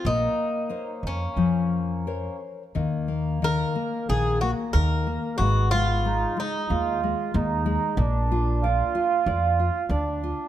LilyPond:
<<
  \new Staff \with { instrumentName = "Bouzouki" } { \time 4/4 \key bes \minor \tempo 4 = 92 ees'4. des'2 r8 | \key aes \dorian r4 bes'4 aes'8 ges'8 bes'4 | ges'8 f'4 ees'4 r4. | r1 | }
  \new Staff \with { instrumentName = "Accordion" } { \time 4/4 \key bes \minor bes2.~ bes8 r8 | \key aes \dorian bes1 | ces'4 ees'4 f'4 ees'4 | d'4 f'2 d'4 | }
  \new Staff \with { instrumentName = "Nylon-string guitar" } { \time 4/4 \key bes \minor bes4 <bes' c'' des''>4 f4 <bes' c'' des''>4 | \key aes \dorian ees8 bes8 ees8 bes8 ees8 bes8 ees8 bes8 | aes8 aes8 aes8 aes8 aes8 aes8 aes8 aes8 | bes8 f'8 d''8 f'8 d''8 f'8 d''8 f'8 | }
  \new Staff \with { instrumentName = "Upright bass" } { \clef bass \time 4/4 \key bes \minor bes,,8 r4 f,8 f,2 | \key aes \dorian ees,2 bes,,4 ees,4 | aes,,2 ees,4 ees,4 | bes,,2 f,4 d,4 | }
>>